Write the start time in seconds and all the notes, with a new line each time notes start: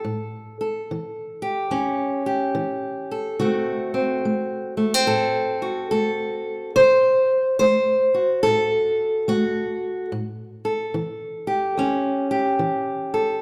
Already playing: A4
0.04 A2
0.61 A4
0.91 E3
1.42 G4
1.71 E2 C#4
2.26 G4
2.55 E3
3.11 A4
3.39 D3 A3 C4 F#4
3.94 C4
4.25 A3
4.77 A3
4.94 C4
5.07 A2 A4
5.62 F#4
5.91 A3 A4
6.76 D3 C5
7.59 A3 C5
8.14 F#4
8.43 A2 A4
9.28 A3 F#4
10.12 A2
10.65 A4
10.94 E3
11.47 G4
11.77 E2 C#4
12.31 G4
12.59 E3
13.14 A4